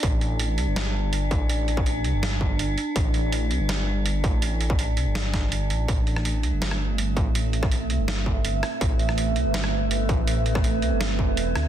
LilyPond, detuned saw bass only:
\new Staff \with { instrumentName = "Detuned saw bass" } { \clef bass \time 4/4 \key a \minor \tempo 4 = 164 a,,4. c,16 g,,4.~ g,,16 a,,8~ | a,,4. c,16 g,,4.~ g,,16 r8 | a,,4. c,16 g,,4.~ g,,16 a,,8~ | a,,4. c,16 g,,8. g,,4 a,,8 |
a,,4. c,16 g,,4.~ g,,16 a,,8~ | a,,4. c,16 g,,4.~ g,,16 r8 | a,,4. c,16 g,,4.~ g,,16 a,,8~ | a,,4. c,16 g,,4 e,,8. d,8 | }